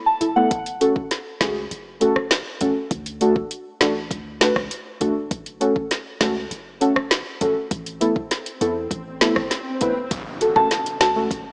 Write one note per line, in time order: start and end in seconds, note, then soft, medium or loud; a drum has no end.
0.06 0.16 A5 medium
0.20 0.47 E1 medium
0.20 0.27 E4 medium
0.20 0.27 A4 medium
0.20 closed hi-hat medium
0.36 0.48 A3 medium
0.36 0.48 B3 medium
0.36 0.48 E4 medium
0.36 0.48 A4 medium
0.36 0.46 F#5 medium
0.51 1.04 F#1 loud
0.51 kick loud
0.51 closed hi-hat medium
0.66 closed hi-hat medium
0.80 0.93 A3 medium
0.80 0.93 C#4 medium
0.80 0.93 F#4 medium
0.80 0.93 A4 loud
0.80 closed hi-hat medium
0.96 kick medium
1.11 snare medium
1.11 closed hi-hat medium
1.41 1.67 C#2 medium
1.41 1.53 A3 medium
1.41 1.53 C#4 medium
1.41 1.53 F#4 medium
1.41 1.53 G#4 medium
1.41 kick loud
1.41 snare loud
1.41 closed hi-hat medium
1.71 2.11 F#1 loud
1.71 closed hi-hat medium
2.00 2.13 A3 medium
2.00 2.13 C#4 medium
2.00 2.13 F#4 medium
2.00 2.13 A4 loud
2.00 closed hi-hat medium
2.16 2.42 F#1 medium
2.16 cross-stick medium
2.31 snare loud
2.31 closed hi-hat medium
2.61 2.74 A1 medium
2.61 2.73 A3 medium
2.61 2.73 C#4 medium
2.61 2.73 F#4 medium
2.61 2.73 A4 loud
2.61 kick medium
2.61 closed hi-hat medium
2.91 3.44 D2 loud
2.91 kick loud
2.91 closed hi-hat medium
3.06 closed hi-hat medium
3.21 3.33 A3 medium
3.21 3.33 D4 medium
3.21 3.33 F#4 medium
3.21 3.33 A4 loud
3.21 closed hi-hat medium
3.36 kick medium
3.51 closed hi-hat medium
3.80 4.12 A1 medium
3.80 3.93 A3 medium
3.80 3.93 D4 medium
3.80 3.93 F#4 medium
3.80 3.93 A4 loud
3.80 snare loud
3.80 closed hi-hat medium
4.11 4.50 D2 loud
4.11 kick medium
4.11 closed hi-hat medium
4.40 4.53 A3 medium
4.40 4.53 D4 medium
4.40 4.53 F#4 medium
4.40 4.53 B4 loud
4.40 snare loud
4.40 closed hi-hat medium
4.56 4.69 C#2 medium
4.56 kick medium
4.56 cross-stick medium
4.71 closed hi-hat medium
5.00 5.28 E1 medium
5.00 5.13 A3 medium
5.00 5.13 D4 medium
5.00 5.13 F#4 medium
5.00 5.13 A4 loud
5.00 kick medium
5.00 closed hi-hat medium
5.31 5.84 F#1 loud
5.31 kick loud
5.31 closed hi-hat medium
5.31 swell medium
5.46 closed hi-hat medium
5.60 5.73 A3 medium
5.60 5.73 C#4 medium
5.60 5.73 F#4 medium
5.60 5.73 A4 loud
5.60 closed hi-hat medium
5.76 kick medium
5.91 snare medium
5.91 closed hi-hat medium
6.20 6.47 C#2 medium
6.20 6.33 A3 medium
6.20 6.33 C#4 medium
6.20 6.33 F#4 medium
6.20 6.33 A4 loud
6.20 kick loud
6.20 snare loud
6.20 closed hi-hat medium
6.51 6.91 F#1 medium
6.51 closed hi-hat medium
6.81 6.93 A3 medium
6.81 6.93 C#4 medium
6.81 6.93 F#4 medium
6.81 6.93 A4 loud
6.81 closed hi-hat medium
6.96 7.22 F#1 medium
6.96 cross-stick loud
7.11 snare loud
7.11 closed hi-hat medium
7.41 7.54 A1 medium
7.41 7.53 A3 medium
7.41 7.53 C#4 medium
7.41 7.53 F#4 medium
7.41 7.53 A4 loud
7.41 kick medium
7.41 closed hi-hat medium
7.71 8.24 A1 loud
7.71 kick loud
7.71 closed hi-hat medium
7.86 closed hi-hat medium
8.00 8.13 A3 medium
8.00 8.13 B3 medium
8.00 8.13 E4 medium
8.00 8.13 A4 loud
8.00 closed hi-hat medium
8.16 kick medium
8.31 snare medium
8.31 closed hi-hat medium
8.46 closed hi-hat medium
8.61 8.88 E2 loud
8.61 8.73 A3 medium
8.61 8.73 B3 medium
8.61 8.73 E4 medium
8.61 8.73 A4 loud
8.61 closed hi-hat medium
8.91 9.30 A1 medium
8.91 kick medium
8.91 closed hi-hat medium
9.21 9.33 A3 medium
9.21 9.33 B3 medium
9.21 9.33 E4 medium
9.21 9.33 A4 loud
9.21 snare loud
9.21 closed hi-hat medium
9.36 9.49 G#1 medium
9.36 kick loud
9.36 cross-stick medium
9.51 snare medium
9.51 closed hi-hat medium
9.81 10.08 E1 medium
9.81 9.93 A3 medium
9.81 9.93 B3 medium
9.81 9.93 E4 medium
9.81 9.93 B4 loud
9.81 kick medium
9.81 closed hi-hat medium
10.11 10.64 F#1 loud
10.11 kick loud
10.11 closed hi-hat medium
10.11 impact medium
10.41 10.47 F#4 medium
10.41 10.47 A4 medium
10.41 closed hi-hat medium
10.56 10.68 A3 medium
10.56 10.68 C#4 medium
10.56 10.68 F#4 medium
10.56 10.68 A4 medium
10.56 10.66 A5 medium
10.56 kick medium
10.56 high bongo medium
10.71 snare medium
10.71 closed hi-hat medium
10.71 high bongo medium
10.86 closed hi-hat medium
11.00 11.27 C#2 medium
11.00 11.07 F#4 medium
11.00 11.07 A4 medium
11.00 11.11 A5 medium
11.00 snare loud
11.00 closed hi-hat medium
11.16 11.28 A3 medium
11.16 11.28 C#4 medium
11.16 11.28 F#4 medium
11.16 11.28 A4 medium
11.31 11.52 F#1 loud
11.31 kick medium
11.31 closed hi-hat medium